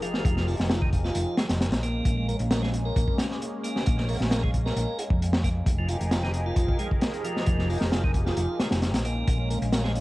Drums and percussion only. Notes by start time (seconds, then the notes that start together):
0.02 closed hi-hat
0.14 snare
0.25 kick, closed hi-hat
0.37 snare
0.48 open hi-hat
0.60 snare
0.70 snare, closed hi-hat
0.82 kick
0.93 kick, closed hi-hat
1.05 snare
1.15 closed hi-hat
1.37 snare, closed hi-hat
1.49 snare, closed hi-hat
1.61 snare, closed hi-hat
1.72 snare, closed hi-hat
1.83 closed hi-hat
2.05 kick, closed hi-hat
2.29 closed hi-hat
2.39 closed hi-hat
2.51 snare, closed hi-hat
2.63 snare
2.74 closed hi-hat
2.96 kick, closed hi-hat
3.08 kick
3.18 snare, closed hi-hat
3.31 snare
3.42 closed hi-hat
3.64 closed hi-hat
3.76 snare
3.86 kick, closed hi-hat
3.98 snare
4.08 open hi-hat
4.21 snare
4.31 snare, closed hi-hat
4.44 kick
4.54 kick, closed hi-hat
4.66 snare
4.77 closed hi-hat
4.99 closed hi-hat
5.10 kick
5.22 closed hi-hat
5.33 snare
5.44 kick, closed hi-hat
5.66 kick, closed hi-hat
5.89 closed hi-hat
6.01 closed hi-hat
6.11 snare, closed hi-hat
6.23 snare
6.34 closed hi-hat
6.56 kick, closed hi-hat
6.69 kick
6.79 closed hi-hat
6.91 kick
7.01 snare, closed hi-hat
7.14 closed hi-hat
7.25 closed hi-hat
7.37 snare
7.46 kick, closed hi-hat
7.59 snare
7.70 open hi-hat
7.81 snare
7.92 snare, closed hi-hat
8.04 kick
8.14 kick, closed hi-hat
8.26 snare
8.37 closed hi-hat
8.60 snare, closed hi-hat
8.71 snare, closed hi-hat
8.82 snare, closed hi-hat
8.94 snare, closed hi-hat
9.05 closed hi-hat
9.28 kick, closed hi-hat
9.51 closed hi-hat
9.62 closed hi-hat
9.72 snare, closed hi-hat
9.84 snare
9.95 closed hi-hat